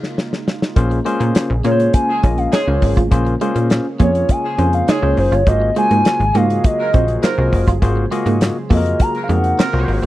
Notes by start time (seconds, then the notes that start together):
Already playing: C#3 G#3 A#3 D#4 F4
0.03 snare
0.18 snare
0.33 snare
0.48 snare
0.62 snare
0.76 A#1 C#3 G#3 A#3 C#4 F4 G#4 C5, kick, closed hi-hat
0.91 muted clean electric guitar stroke, closed hi-hat
1.05 G#3 A#3 C#4 F4 G#4 C5, closed hi-hat
1.20 A#2 A#3, closed hi-hat
1.35 snare, clap, closed hi-hat
1.50 A#1
1.64 A#2 A#3 C#4 F4 G#4 A#4 C#5, closed hi-hat
1.72 C5
1.80 closed hi-hat
1.94 G#5, kick, closed hi-hat
2.08 F3 G#3 C#4 G#4
2.23 A#1 A#3 C#4 F4 G#4 D#5, kick, closed hi-hat
2.38 F5, closed hi-hat
2.52 F3 G#3 C#4 D#4 G#4 C#5, snare, clap, closed hi-hat
2.68 C#2 A#3 C#4 F4 G#4 C5, muted clean electric guitar stroke
2.82 G#1, kick, open hi-hat
2.97 A1 F4, kick, closed hi-hat
3.11 A#1 A#3 C#4 F4 G#4 C5, kick, closed hi-hat
3.26 muted clean electric guitar stroke, closed hi-hat
3.41 G#3 A#3 C#4 F4 G#4 C5, closed hi-hat
3.56 A#2 A#3, closed hi-hat
3.70 snare, clap, closed hi-hat
3.99 F2 A#3 C#4 F4 G#4 C#5, kick, closed hi-hat
4.15 closed hi-hat
4.29 G#5, kick, closed hi-hat
4.44 F3 G#3 C#4 G#4
4.58 F2 A#3 C#4 F4 G#4 C5, closed hi-hat
4.73 F5, closed hi-hat
4.88 F3 G#3 C#4 D#4 G#4 C#5, snare, clap, closed hi-hat
5.02 C#2 A#3 C#4 F4 G#4 C5, muted clean electric guitar stroke
5.17 F#1 C5, open hi-hat
5.32 G1 F4 C#5, closed hi-hat
5.46 G#1 F#3 A#3 F4 F#4 G#4 C5 D#5, kick, closed hi-hat
5.62 muted clean electric guitar stroke
5.76 G#3 A#3 F4 F#4 G#4 C5 G#5, closed hi-hat
5.91 G#2 A#3, closed hi-hat
6.05 snare, clap, closed hi-hat
6.20 G#1, closed hi-hat
6.35 G#2 A#3 F4 F#4 G#4 D#5 F5, closed hi-hat
6.50 closed hi-hat
6.64 D#5, kick, closed hi-hat
6.79 F#3 A#3 F4 A#4
6.93 A#1 A#3 C4 F4 F#4 G#4 C5, kick, closed hi-hat
7.08 closed hi-hat
7.23 F#3 A#3 D#4 F4 A#4 C5, snare, clap, closed hi-hat
7.38 C2 A#3 F4 F#4 G#4 D#5, muted clean electric guitar stroke
7.52 F#1, kick, open hi-hat
7.67 G1 F4, kick, closed hi-hat
7.82 G#1 A#3 F4 F#4 G#4 C5, kick, closed hi-hat
7.97 muted clean electric guitar stroke
8.11 G#3 A#3 F4 F#4 G#4 D#5, closed hi-hat
8.26 G#2 A#3, closed hi-hat
8.41 snare, clap, closed hi-hat
8.70 F2 A#3 F4 F#4 G#4 A4 D#5, kick, open hi-hat
8.77 A#4
8.86 closed hi-hat
9.00 A#5, kick, closed hi-hat
9.14 F#3 A#3 F4 A#4, closed hi-hat
9.24 F5
9.29 F2 G#3 A#3 D#4 F#4 G#4 A#4 F#5, closed hi-hat
9.44 closed hi-hat
9.59 F#3 A#3 C4 F4 A#4, snare, clap, closed hi-hat
9.73 C2 A#3 F4 F#4 G#4 C5, muted clean electric guitar stroke
9.88 G#1, open hi-hat
10.03 A1